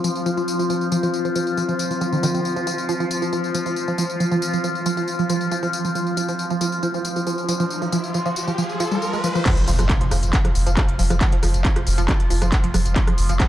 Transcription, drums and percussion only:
0.04 tambourine medium
0.15 tambourine soft
0.26 tambourine soft
0.37 tambourine soft
0.48 tambourine medium
0.59 tambourine soft
0.70 tambourine soft
0.81 tambourine soft
0.92 tambourine medium
1.03 tambourine soft
1.14 tambourine soft
1.25 tambourine soft
1.35 tambourine medium
1.47 tambourine soft
1.57 tambourine soft
1.69 tambourine soft
1.79 tambourine medium
1.91 tambourine soft
2.01 tambourine soft
2.13 tambourine soft
2.23 tambourine medium
2.34 tambourine soft
2.45 tambourine soft
2.56 tambourine soft
2.67 tambourine medium
2.78 tambourine soft
2.89 tambourine soft
3.00 tambourine soft
3.11 tambourine medium
3.22 tambourine soft
3.33 tambourine soft
3.44 tambourine soft
3.54 tambourine medium
3.66 tambourine soft
3.76 tambourine soft
3.88 tambourine soft
3.98 tambourine medium
4.10 tambourine soft
4.20 tambourine soft
4.31 tambourine soft
4.42 tambourine medium
4.53 tambourine soft
4.64 tambourine soft
4.75 tambourine soft
4.86 tambourine medium
4.97 tambourine soft
5.08 tambourine soft
5.19 tambourine soft
5.29 tambourine medium
5.41 tambourine soft
5.51 tambourine soft
5.63 tambourine soft
5.73 tambourine medium
5.85 tambourine soft
5.95 tambourine soft
6.07 tambourine soft
6.17 tambourine medium
6.28 tambourine soft
6.39 tambourine soft
6.50 tambourine soft
6.61 tambourine medium
6.72 tambourine soft
6.83 tambourine soft
6.94 tambourine soft
7.05 tambourine medium
7.16 tambourine soft
7.27 tambourine soft
7.38 tambourine soft
7.49 tambourine medium
7.60 tambourine soft
7.70 tambourine soft
7.82 tambourine soft
7.92 tambourine medium
8.04 tambourine soft
8.14 tambourine soft
8.26 tambourine soft
8.36 tambourine medium
8.48 tambourine soft
8.58 tambourine soft
8.69 tambourine soft
8.80 tambourine medium
8.91 tambourine soft
9.02 tambourine soft
9.13 tambourine soft
9.24 tambourine medium
9.35 tambourine soft
9.46 kick loud
9.46 cross-stick medium
9.46 clap loud
9.46 closed hi-hat medium
9.46 crash loud
9.46 tambourine soft
9.57 closed hi-hat medium
9.68 open hi-hat loud
9.68 tambourine medium
9.79 cross-stick medium
9.79 closed hi-hat medium
9.79 tambourine soft
9.89 kick loud
9.89 clap loud
9.89 closed hi-hat medium
9.89 tambourine soft
10.01 closed hi-hat medium
10.11 cross-stick medium
10.11 open hi-hat loud
10.11 tambourine medium
10.23 closed hi-hat medium
10.23 tambourine soft
10.33 kick loud
10.33 clap loud
10.33 closed hi-hat medium
10.33 tambourine soft
10.45 cross-stick medium
10.45 closed hi-hat medium
10.55 open hi-hat loud
10.55 tambourine medium
10.66 closed hi-hat medium
10.66 tambourine soft
10.77 kick loud
10.77 cross-stick medium
10.77 clap loud
10.77 closed hi-hat medium
10.88 closed hi-hat medium
10.99 open hi-hat loud
10.99 tambourine medium
11.10 cross-stick medium
11.10 closed hi-hat medium
11.10 tambourine soft
11.21 kick loud
11.21 clap loud
11.21 closed hi-hat medium
11.21 tambourine soft
11.32 closed hi-hat medium
11.43 cross-stick medium
11.43 open hi-hat loud
11.43 tambourine medium
11.54 closed hi-hat medium
11.54 tambourine soft
11.65 kick loud
11.65 clap loud
11.65 closed hi-hat medium
11.65 tambourine soft
11.76 cross-stick medium
11.76 closed hi-hat medium
11.87 open hi-hat loud
11.87 tambourine medium
11.98 closed hi-hat medium
11.98 tambourine soft
12.08 kick loud
12.08 cross-stick medium
12.08 clap loud
12.08 closed hi-hat medium
12.08 tambourine soft
12.20 closed hi-hat medium
12.30 open hi-hat loud
12.30 tambourine medium
12.42 cross-stick medium
12.42 closed hi-hat medium
12.42 tambourine soft
12.52 kick loud
12.52 clap loud
12.52 closed hi-hat medium
12.52 tambourine soft
12.64 closed hi-hat medium
12.74 cross-stick medium
12.74 open hi-hat loud
12.74 tambourine medium
12.85 closed hi-hat medium
12.85 tambourine soft
12.96 kick loud
12.96 clap loud
12.96 closed hi-hat medium
12.96 tambourine soft
13.07 cross-stick medium
13.07 closed hi-hat medium
13.18 open hi-hat loud
13.18 tambourine medium
13.29 closed hi-hat medium
13.29 tambourine soft
13.40 kick loud
13.40 cross-stick medium
13.40 clap loud
13.40 closed hi-hat medium
13.40 tambourine soft

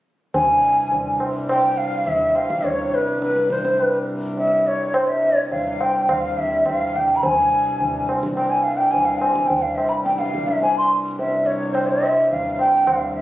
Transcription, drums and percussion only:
0.34 tabla tin medium
0.34 tabla ge medium
0.92 tabla tin medium
0.92 tabla ge medium
1.20 tabla na medium
1.49 tabla na medium
2.06 tabla tin medium
2.06 tabla ge medium
2.35 tabla na medium
2.50 tabla ke medium
2.64 tabla tin medium
2.64 tabla ge medium
3.22 tabla te medium
3.36 tabla te soft
3.50 tabla ke medium
3.65 tabla te medium
3.80 tabla tin medium
4.37 tabla tin medium
4.94 tabla na medium
5.52 tabla tin medium
5.52 tabla ge medium
5.80 tabla na medium
6.09 tabla na medium
6.09 tabla ge medium
6.38 tabla ge soft
6.66 tabla na medium
6.66 tabla ge medium
6.95 tabla ge soft
7.23 tabla tin medium
7.23 tabla ge medium
7.80 tabla tin medium
7.80 tabla ge medium
8.09 tabla na medium
8.23 tabla ke medium
8.37 tabla na medium
8.94 tabla tin medium
8.94 tabla ge medium
9.21 tabla na medium
9.36 tabla ke medium
9.50 tabla tin medium
9.50 tabla ge medium
9.78 tabla na medium
10.06 tabla te medium
10.20 tabla te medium
10.35 tabla ke medium
10.49 tabla te medium
10.63 tabla tin medium
11.19 tabla tin medium
11.75 tabla na medium
12.03 tabla na soft
12.31 tabla tin medium
12.31 tabla ge medium
12.59 tabla na soft
12.87 tabla na medium
12.87 tabla ge medium
13.14 tabla ge soft

